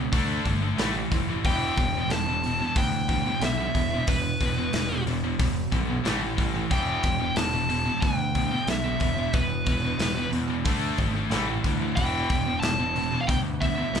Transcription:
Already playing: distorted electric guitar E2 B2
0.12 picked electric bass D2, distorted electric guitar D3 A3 D4, kick, open hi-hat
0.45 picked electric bass G1, distorted electric guitar D3 A3, kick, open hi-hat
0.62 distorted electric guitar D3 A3
0.76 picked electric bass A1, distorted electric guitar A2 E3 A3, snare, open hi-hat
0.96 distorted electric guitar A2 E3
1.12 picked electric bass F1, distorted electric guitar A2 E3, kick, open hi-hat
1.30 distorted electric guitar A2 E3
1.44 picked electric bass E1, distorted electric guitar E2 B2 E3, lead electric guitar G5, kick, open hi-hat
1.77 picked electric bass E1, distorted electric guitar E2 B2, kick, open hi-hat
1.94 distorted electric guitar E2 B2
1.98 distorted electric guitar E2
2.08 picked electric bass E1, distorted electric guitar E2 B2, snare, open hi-hat
2.12 lead electric guitar A5
2.29 distorted electric guitar E2 B2
2.42 distorted electric guitar E2 B2, open hi-hat
2.47 distorted electric guitar B2
2.62 distorted electric guitar E2 B2
2.76 picked electric bass D2, distorted electric guitar E2 B2, lead electric guitar G5, kick, open hi-hat
3.09 distorted electric guitar E2 B2, kick, open hi-hat
3.27 distorted electric guitar E2 B2
3.40 picked electric bass B1, lead electric guitar E5, snare, open hi-hat
3.44 distorted electric guitar E2 B2
3.60 distorted electric guitar E2 B2
3.75 picked electric bass E1, distorted electric guitar E2 B2, kick, open hi-hat
3.91 distorted electric guitar E2 B2
3.95 distorted electric guitar E2
4.07 picked electric bass E1, distorted electric guitar E2 B2, lead electric guitar B4, kick, open hi-hat
4.41 picked electric bass E1, distorted electric guitar E2 B2, kick, open hi-hat
4.58 distorted electric guitar E2 B2
4.73 picked electric bass E1, distorted electric guitar E2 B2, snare, open hi-hat
4.91 distorted electric guitar E2 B2
5.06 picked electric bass E1, distorted electric guitar E2 B2, open hi-hat
5.24 distorted electric guitar E2 B2
5.39 picked electric bass E1, distorted electric guitar E2 B2, kick, open hi-hat
5.72 picked electric bass B1, distorted electric guitar E2 B2, kick, open hi-hat
5.87 distorted electric guitar E2 B2
6.04 picked electric bass A1, distorted electric guitar A2 E3 A3, snare, open hi-hat
6.21 distorted electric guitar A2 E3
6.37 picked electric bass A1, distorted electric guitar A2 E3, kick, open hi-hat
6.54 distorted electric guitar A2 E3
6.71 picked electric bass E1, distorted electric guitar E2 B2 E3, lead electric guitar G5, kick, open hi-hat
7.03 picked electric bass E1, distorted electric guitar E2 B2, kick, open hi-hat
7.20 distorted electric guitar E2 B2
7.35 picked electric bass E1, distorted electric guitar E2 B2, lead electric guitar A5, snare, open hi-hat
7.53 distorted electric guitar E2 B2
7.69 distorted electric guitar E2 B2, open hi-hat
7.85 distorted electric guitar E2 B2
8.02 picked electric bass D2, distorted electric guitar E2 B2, lead electric guitar G5, kick, open hi-hat
8.35 distorted electric guitar E2 B2, kick, open hi-hat
8.51 distorted electric guitar E2 B2
8.67 picked electric bass B1, distorted electric guitar E2 B2, lead electric guitar E5, snare, open hi-hat
8.85 distorted electric guitar E2 B2
9.00 picked electric bass E1, distorted electric guitar E2 B2, kick, open hi-hat
9.19 distorted electric guitar E2 B2
9.33 picked electric bass E1, distorted electric guitar E2 B2, lead electric guitar B4, kick, open hi-hat
9.66 picked electric bass E1, distorted electric guitar E2 B2, kick, open hi-hat
9.85 distorted electric guitar E2 B2
9.98 picked electric bass E1, distorted electric guitar E2 B2, snare, open hi-hat
10.03 distorted electric guitar B2
10.18 distorted electric guitar E2 B2
10.32 picked electric bass E2, distorted electric guitar E2 B2, open hi-hat
10.50 distorted electric guitar E2 B2
10.65 picked electric bass D2, distorted electric guitar D3 A3 D4, kick, open hi-hat
10.98 picked electric bass G#1, distorted electric guitar D3 A3, kick, open hi-hat
11.16 distorted electric guitar D3 A3
11.30 picked electric bass A1, distorted electric guitar A2 E3 A3, snare, open hi-hat
11.49 distorted electric guitar A2 E3
11.64 picked electric bass D2, distorted electric guitar A2 E3, kick, open hi-hat
11.82 distorted electric guitar A2 E3
11.96 picked electric bass E1, distorted electric guitar E2 B2, lead electric guitar G5, kick, open hi-hat
12.00 distorted electric guitar E3
12.30 picked electric bass E1, distorted electric guitar E2 B2, kick, open hi-hat
12.47 distorted electric guitar E2 B2
12.60 picked electric bass E1, distorted electric guitar E2 B2, lead electric guitar A5, snare, open hi-hat
12.80 distorted electric guitar E2 B2
12.96 distorted electric guitar E2 B2, open hi-hat
13.13 distorted electric guitar E2 B2
13.21 lead electric guitar F5
13.27 picked electric bass D2, distorted electric guitar E2 B2, lead electric guitar G5, kick, open hi-hat
13.61 distorted electric guitar E2 B2, lead electric guitar E5, kick, open hi-hat
13.78 distorted electric guitar E2 B2
13.93 picked electric bass B1, distorted electric guitar E2 B2, snare, open hi-hat

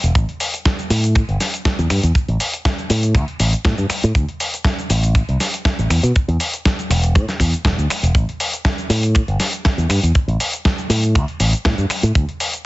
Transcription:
0.03 fingered electric bass E1, closed hi-hat, shaker
0.15 fingered electric bass A1, kick, closed hi-hat, shaker
0.29 closed hi-hat
0.40 open hi-hat, shaker
0.54 closed hi-hat, shaker
0.65 kick, snare, closed hi-hat, shaker
0.79 closed hi-hat, shaker
0.90 fingered electric bass A2, open hi-hat, shaker
1.04 closed hi-hat, shaker
1.15 finger snap, kick, closed hi-hat, shaker
1.29 fingered electric bass G1, closed hi-hat
1.40 snare, open hi-hat, shaker
1.54 closed hi-hat, shaker
1.65 kick, snare, closed hi-hat, shaker
1.79 fingered electric bass E2, closed hi-hat, shaker
1.90 fingered electric bass G2, finger snap, open hi-hat, shaker
2.03 fingered electric bass E2, closed hi-hat, shaker
2.15 kick, closed hi-hat, shaker
2.28 fingered electric bass A1, closed hi-hat
2.40 open hi-hat, shaker
2.54 closed hi-hat, shaker
2.65 kick, snare, closed hi-hat, shaker
2.78 closed hi-hat, shaker
2.90 fingered electric bass A2, open hi-hat, shaker
3.03 closed hi-hat, shaker
3.15 fingered electric bass D2, finger snap, kick, closed hi-hat, shaker
3.28 closed hi-hat
3.40 fingered electric bass A1, open hi-hat, shaker
3.53 muted fingered electric bass stroke, closed hi-hat, shaker
3.65 fingered electric bass A2, kick, snare, closed hi-hat, shaker
3.78 fingered electric bass G2, closed hi-hat, shaker
3.90 finger snap, muted fingered electric bass stroke, open hi-hat, shaker
4.03 fingered electric bass A2, closed hi-hat, shaker
4.15 fingered electric bass D2, kick, closed hi-hat, shaker
4.29 closed hi-hat
4.40 open hi-hat, shaker
4.54 closed hi-hat, shaker
4.65 kick, snare, closed hi-hat, shaker
4.79 closed hi-hat, shaker
4.90 fingered electric bass A1, open hi-hat, shaker
5.03 closed hi-hat, shaker
5.15 finger snap, kick, closed hi-hat, shaker
5.29 fingered electric bass C2, closed hi-hat
5.40 snare, open hi-hat, shaker
5.54 closed hi-hat, shaker
5.65 kick, snare, closed hi-hat, shaker
5.79 fingered electric bass A1, closed hi-hat, shaker
5.90 fingered electric bass E2, finger snap, open hi-hat, shaker
6.03 fingered electric bass B2, closed hi-hat, shaker
6.16 kick, closed hi-hat, shaker
6.28 fingered electric bass E2, closed hi-hat
6.40 open hi-hat, shaker
6.54 closed hi-hat, shaker
6.65 kick, snare, closed hi-hat, shaker
6.79 closed hi-hat, shaker
6.90 fingered electric bass E1, finger snap, open hi-hat, shaker
7.04 closed hi-hat, shaker
7.15 fingered electric bass A2, finger snap, kick, closed hi-hat, shaker
7.29 snare, closed hi-hat, shaker
7.40 fingered electric bass E2, kick, open hi-hat, shaker
7.53 muted fingered electric bass stroke, closed hi-hat, shaker
7.65 fingered electric bass E1, kick, snare, closed hi-hat, shaker
7.78 fingered electric bass D2, closed hi-hat, shaker
7.90 finger snap, open hi-hat, shaker
8.03 fingered electric bass E1, closed hi-hat, shaker
8.15 fingered electric bass A1, kick, closed hi-hat, shaker
8.29 closed hi-hat
8.40 open hi-hat, shaker
8.53 closed hi-hat, shaker
8.65 kick, snare, closed hi-hat, shaker
8.78 closed hi-hat, shaker
8.90 fingered electric bass A2, open hi-hat, shaker
9.03 closed hi-hat, shaker
9.15 finger snap, kick, closed hi-hat, shaker
9.28 fingered electric bass G1, closed hi-hat
9.40 snare, open hi-hat, shaker
9.53 closed hi-hat, shaker
9.65 kick, snare, closed hi-hat, shaker
9.78 fingered electric bass E2, closed hi-hat, shaker
9.89 fingered electric bass G2, finger snap, open hi-hat, shaker
10.03 fingered electric bass E2, closed hi-hat, shaker
10.15 kick, closed hi-hat, shaker
10.28 fingered electric bass A1, closed hi-hat
10.40 open hi-hat, shaker
10.53 closed hi-hat, shaker
10.65 kick, snare, closed hi-hat, shaker
10.78 closed hi-hat, shaker
10.90 fingered electric bass A2, open hi-hat, shaker
11.03 closed hi-hat, shaker
11.15 fingered electric bass D2, finger snap, kick, closed hi-hat, shaker
11.28 closed hi-hat
11.40 fingered electric bass A1, open hi-hat, shaker
11.53 muted fingered electric bass stroke, closed hi-hat, shaker
11.65 fingered electric bass A2, kick, snare, closed hi-hat, shaker
11.78 fingered electric bass G2, closed hi-hat, shaker
11.90 finger snap, muted fingered electric bass stroke, open hi-hat, shaker
12.03 fingered electric bass A2, closed hi-hat, shaker
12.15 fingered electric bass D2, kick, closed hi-hat, shaker
12.29 closed hi-hat
12.40 open hi-hat, shaker
12.53 closed hi-hat, shaker

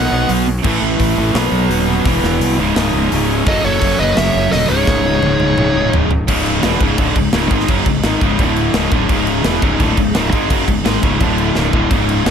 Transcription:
Already playing: distorted electric guitar B2 F#3 B3, string section B3 F#4 C#5, lead electric guitar D#5 F#5
0.11 fingered electric bass B1, distorted electric guitar B2 F#3 B3
0.29 fingered electric bass B1, open hi-hat
0.64 fingered electric bass A1, distorted electric guitar A2 E3 A3, string section A3 E4 B4, kick, crash
0.82 fingered electric bass A1
1.00 fingered electric bass A1, kick, open hi-hat
1.16 fingered electric bass A1, distorted electric guitar A2 E3 A3
1.34 fingered electric bass B1, distorted electric guitar B2 F#3 B3, string section B3 F#4 C#5, snare, open hi-hat
1.51 fingered electric bass B1
1.69 fingered electric bass D#1, open hi-hat
1.87 distorted electric guitar B2 F#3 B3
2.05 fingered electric bass E1, distorted electric guitar E2 B2 E3, string section E4 B4 F#5, kick, open hi-hat
2.23 fingered electric bass E1, snare
2.40 fingered electric bass C2, open hi-hat
2.57 fingered electric bass C#1, distorted electric guitar C#2 G#2 C#3, string section C#4 D#5 G#5
2.76 fingered electric bass C#1, snare, open hi-hat
2.93 fingered electric bass C#1
3.12 fingered electric bass C#1, distorted electric guitar C#2 G#2 C#3, open hi-hat
3.46 fingered electric bass F#1, distorted electric guitar F#2 C#3 F#3, string section F#3, lead electric guitar A4 D#5, kick, open hi-hat
3.64 fingered electric bass F#1, lead electric guitar A4 C#5
3.81 fingered electric bass F#1, kick, open hi-hat
3.99 fingered electric bass F#1, distorted electric guitar F#2 C#3 F#3, lead electric guitar B4 D#5
4.16 fingered electric bass F#1, lead electric guitar C#5 E5, snare, open hi-hat
4.35 fingered electric bass F#1
4.51 fingered electric bass D#1, distorted electric guitar F#2 C#3 F#3, lead electric guitar A4 D#5, snare, open hi-hat
4.69 fingered electric bass C#1, distorted electric guitar C#2 G#2 C#3, string section C#3 G#3 D#4, lead electric guitar G#4 C#5
4.87 fingered electric bass C#1, kick, snare
5.04 fingered electric bass C#1
5.22 fingered electric bass C#1, distorted electric guitar C#2 G#2 C#3, high tom
5.39 fingered electric bass C#1, high tom
5.57 fingered electric bass C#1, mid tom
5.74 fingered electric bass C#1, distorted electric guitar C#2 G#2 C#3
5.92 fingered electric bass C#1, floor tom
6.11 floor tom
6.28 fingered electric bass C#1, distorted electric guitar C#2 G#2 C#3, string section C#3 G#3 D#4, kick, crash
6.46 crash
6.63 fingered electric bass E1, distorted electric guitar E2 B2 E3, snare, crash
6.80 fingered electric bass C#1, distorted electric guitar C#2 G#2 C#3, kick, crash
6.98 fingered electric bass D1, distorted electric guitar D2 A2 D3, kick, crash
7.16 fingered electric bass C#1, distorted electric guitar C#2 G#2, kick, crash
7.32 fingered electric bass C#1, distorted electric guitar C#2 G#2 C#3, snare, crash
7.51 fingered electric bass G#1, distorted electric guitar G#2 D#3 G#3, kick, crash
7.60 snare
7.68 fingered electric bass F#1, distorted electric guitar F#2 C#3 F#3, kick, crash
7.86 fingered electric bass C#1, distorted electric guitar C#2 G#2, kick, crash
8.03 fingered electric bass G#1, distorted electric guitar G#2 D#3 G#3, snare, crash
8.21 fingered electric bass C#1, distorted electric guitar C#2 G#2 C#3, kick, crash
8.39 fingered electric bass D1, distorted electric guitar D2 A2 D3, string section D3 A3 E4, kick, crash
8.56 crash
8.73 fingered electric bass C#1, distorted electric guitar C#2 G#2 C#3, string section C#3 G#3 D#4, snare, crash
8.91 fingered electric bass D1, distorted electric guitar D2 A2 D3, kick, crash
9.09 fingered electric bass C#1, distorted electric guitar C#2 G#2 C#3, kick, crash
9.27 crash
9.44 fingered electric bass E1, distorted electric guitar E2 B2 E3, snare, crash
9.62 fingered electric bass C#1, distorted electric guitar C#2 G#2 C#3, kick, crash
9.80 fingered electric bass D1, distorted electric guitar D2 A2 D3, kick, crash
9.97 fingered electric bass C#1, distorted electric guitar C#2 G#2, kick, crash
10.14 fingered electric bass C#1, distorted electric guitar C#2 G#2 C#3, snare, crash
10.32 fingered electric bass G#1, distorted electric guitar G#2 D#3 G#3, kick, crash
10.50 fingered electric bass F#1, distorted electric guitar F#2 C#3 F#3, kick, crash
10.68 fingered electric bass C#1, distorted electric guitar C#2 G#2, kick, crash
10.84 fingered electric bass G#1, distorted electric guitar G#2 D#3 G#3, snare, crash
11.03 fingered electric bass C#1, distorted electric guitar C#2 G#2 C#3, kick, crash
11.20 fingered electric bass D1, distorted electric guitar D2 A2 D3, string section D3 A3 E4, kick, crash
11.38 crash
11.55 fingered electric bass C#1, distorted electric guitar C#2 G#2 C#3, string section C#3 G#3 D#4, snare
11.73 fingered electric bass D1, distorted electric guitar D2 A2 D3, kick
11.91 fingered electric bass C#1, distorted electric guitar C#2 G#2 C#3, kick, crash
12.09 crash
12.26 fingered electric bass E1, distorted electric guitar E2 B2 E3, snare, crash

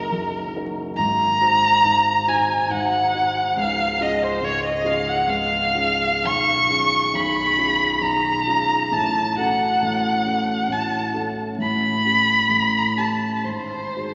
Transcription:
Already playing: grand piano F#1 F#2 D#4 F#4 A#4, violin A#4
0.12 grand piano F#1 F#2
0.56 grand piano D#4 F#4 A#4
0.96 grand piano G#1 G#2, violin A#5
1.41 grand piano D#4 F#4 C5
1.84 grand piano G#1 G#2
2.27 grand piano D#4 F#4 C5, violin G#5
2.70 grand piano G#1 G#2, violin F#5
3.14 grand piano D#4 F#4
3.57 grand piano C#1 C#2, violin F5
4.00 grand piano C#4 F4 G#4, violin D#5
4.23 violin C5
4.41 grand piano C#1 C#2, violin C#5
4.65 violin D#5
4.83 grand piano C#4 F4 G#4, violin F5
5.08 violin F#5
5.27 grand piano C#1 C#2, violin F5
5.75 grand piano C#4 F4 G#4
6.24 grand piano B0 B1, violin C#6
6.69 grand piano C#4 F4 G#4
7.13 grand piano B0 B1, violin B5
7.57 grand piano C#4 F4 G#4
8.01 grand piano B0 B1, violin A#5
8.47 grand piano C#4 F4 G#4
8.91 grand piano A1 A2, violin A5
9.36 grand piano C#4 F#4 A4, violin F#5
9.82 grand piano A1 A2
10.25 grand piano C#4 F#4 A4
10.69 grand piano A1 A2, violin A5
11.14 grand piano C#4 F#4 A4
11.58 grand piano A1 A2, violin B5
12.04 grand piano C#4 G4
12.49 grand piano A1 A2
12.97 grand piano C#4 G4, violin A5
13.44 grand piano G#1 G#2, violin C5
13.96 grand piano D#4 F#4 G#4

